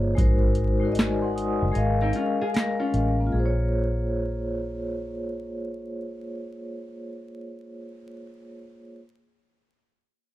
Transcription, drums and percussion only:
0.18 kick, closed hi-hat
0.55 closed hi-hat
0.95 snare, closed hi-hat
1.00 clap
1.38 closed hi-hat
1.75 closed hi-hat
2.13 closed hi-hat
2.54 snare, clap, closed hi-hat
2.94 closed hi-hat

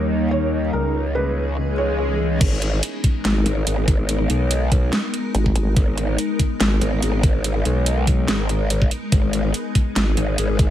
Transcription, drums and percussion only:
2.41 kick, closed hi-hat, crash
2.62 closed hi-hat
2.83 closed hi-hat
3.04 kick, closed hi-hat
3.25 snare, closed hi-hat
3.46 closed hi-hat
3.67 closed hi-hat
3.88 kick, closed hi-hat
4.09 closed hi-hat
4.30 closed hi-hat
4.51 closed hi-hat
4.72 kick, closed hi-hat
4.93 snare, closed hi-hat
5.14 closed hi-hat
5.35 closed hi-hat
5.46 kick
5.56 closed hi-hat
5.76 kick, closed hi-hat
5.98 closed hi-hat
6.18 closed hi-hat
6.39 kick, closed hi-hat
6.60 snare, closed hi-hat
6.81 closed hi-hat
7.02 closed hi-hat
7.23 kick, closed hi-hat
7.44 closed hi-hat
7.65 closed hi-hat
7.86 closed hi-hat
8.07 kick, closed hi-hat
8.28 snare, closed hi-hat
8.49 closed hi-hat
8.70 closed hi-hat
8.82 kick
8.91 closed hi-hat
9.12 kick, closed hi-hat
9.33 closed hi-hat
9.54 closed hi-hat
9.75 kick, closed hi-hat
9.96 snare, closed hi-hat
10.17 closed hi-hat
10.38 closed hi-hat
10.59 kick, closed hi-hat

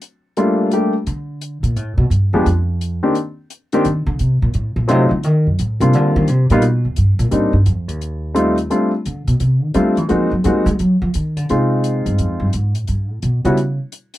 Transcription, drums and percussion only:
0.02 closed hi-hat
0.37 closed hi-hat
0.71 closed hi-hat
1.07 closed hi-hat
1.41 closed hi-hat
1.64 closed hi-hat
1.76 closed hi-hat
2.11 closed hi-hat
2.46 closed hi-hat
2.81 closed hi-hat
3.15 closed hi-hat
3.50 closed hi-hat
3.72 closed hi-hat
3.85 closed hi-hat
4.19 closed hi-hat
4.54 closed hi-hat
4.89 closed hi-hat
5.23 closed hi-hat
5.59 closed hi-hat
5.81 closed hi-hat
5.93 closed hi-hat
6.28 closed hi-hat
6.50 closed hi-hat
6.62 closed hi-hat
6.96 closed hi-hat
7.19 closed hi-hat
7.31 closed hi-hat
7.66 closed hi-hat
7.89 closed hi-hat
8.01 closed hi-hat
8.36 closed hi-hat
8.57 closed hi-hat
8.71 closed hi-hat
9.05 closed hi-hat
9.28 closed hi-hat
9.40 closed hi-hat
9.74 closed hi-hat
9.97 closed hi-hat
10.09 closed hi-hat
10.44 closed hi-hat
10.67 closed hi-hat
10.79 closed hi-hat
11.14 closed hi-hat
11.37 closed hi-hat
11.49 closed hi-hat
11.84 closed hi-hat
12.06 closed hi-hat
12.18 closed hi-hat
12.53 closed hi-hat
12.75 closed hi-hat
12.87 closed hi-hat
13.22 closed hi-hat
13.45 closed hi-hat
13.57 closed hi-hat
13.92 closed hi-hat
14.14 closed hi-hat

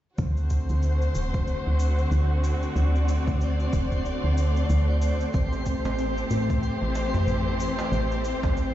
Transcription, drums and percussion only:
0.18 kick, cabasa
0.37 cabasa
0.50 kick, cabasa
0.69 cabasa
0.82 cabasa
1.02 cabasa
1.15 cabasa
1.34 kick, cabasa
1.47 cabasa
1.79 cabasa
1.98 cabasa
2.11 cabasa
2.44 cabasa
2.63 cabasa
2.76 cabasa
2.96 cabasa
3.08 cabasa
3.27 kick, cabasa
3.41 cabasa
3.60 cabasa
3.73 kick, cabasa
3.92 kick, cabasa
4.05 cabasa
4.37 cabasa
4.56 cabasa
4.70 cabasa
5.02 cabasa
5.21 cabasa
5.34 kick, cabasa
5.52 darbuka ka, cabasa
5.66 kick, cabasa
5.85 darbuka tek, cabasa
5.98 cabasa
6.17 cabasa
6.30 cabasa
6.50 kick, cabasa
6.63 cabasa
6.81 darbuka ka
6.95 darbuka ka, cabasa
7.14 darbuka ka, darbuka dum, cabasa
7.27 cabasa
7.47 darbuka ka
7.60 cabasa
7.79 darbuka tek, cabasa
7.93 cabasa
8.11 darbuka ka, cabasa
8.25 cabasa
8.43 kick, darbuka tek, cabasa
8.57 cabasa

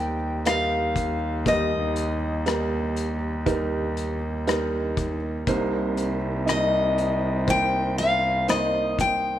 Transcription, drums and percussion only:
0.45 cross-stick, closed hi-hat
0.96 kick, closed hi-hat
1.46 kick, closed hi-hat
1.96 closed hi-hat
2.46 cross-stick, closed hi-hat
2.96 closed hi-hat
3.46 kick, closed hi-hat
3.97 closed hi-hat
4.47 cross-stick, closed hi-hat
4.97 kick, closed hi-hat
5.47 kick, closed hi-hat
5.97 closed hi-hat
6.48 cross-stick, closed hi-hat
6.98 closed hi-hat
7.48 kick, closed hi-hat
7.98 closed hi-hat
8.48 cross-stick, closed hi-hat
8.99 kick, closed hi-hat

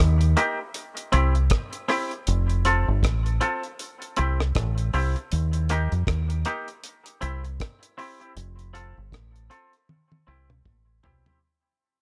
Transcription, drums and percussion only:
0.21 closed hi-hat
0.37 closed hi-hat
0.74 closed hi-hat
0.97 closed hi-hat
1.13 closed hi-hat
1.35 closed hi-hat
1.50 kick, cross-stick, closed hi-hat
1.73 closed hi-hat
1.89 cross-stick, open hi-hat
2.11 closed hi-hat
2.27 closed hi-hat
2.50 closed hi-hat
2.65 closed hi-hat
3.03 kick, cross-stick, closed hi-hat
3.26 closed hi-hat
3.41 closed hi-hat
3.63 closed hi-hat
3.79 closed hi-hat
4.02 closed hi-hat
4.16 closed hi-hat
4.40 cross-stick
4.55 kick, cross-stick, closed hi-hat
4.78 closed hi-hat
4.93 open hi-hat
5.16 closed hi-hat
5.32 closed hi-hat
5.53 closed hi-hat
5.69 closed hi-hat
5.92 closed hi-hat
6.07 kick, cross-stick, closed hi-hat
6.30 closed hi-hat
6.45 closed hi-hat
6.68 closed hi-hat
6.84 closed hi-hat
7.06 closed hi-hat
7.22 closed hi-hat
7.45 closed hi-hat
7.60 kick, cross-stick, closed hi-hat
7.83 closed hi-hat
7.99 open hi-hat
8.21 closed hi-hat
8.37 closed hi-hat
8.59 closed hi-hat
8.75 closed hi-hat
9.12 kick, cross-stick, closed hi-hat
9.36 closed hi-hat
9.51 closed hi-hat
9.73 closed hi-hat
9.89 high tom
10.12 high tom
10.50 mid tom
10.65 kick, mid tom
11.04 floor tom
11.26 floor tom

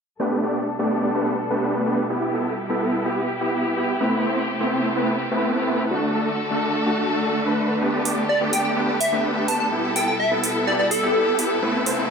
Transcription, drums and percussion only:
8.05 open hi-hat
8.53 open hi-hat
9.01 open hi-hat
9.48 open hi-hat
9.96 open hi-hat
10.44 open hi-hat
10.91 open hi-hat
11.39 open hi-hat
11.86 open hi-hat

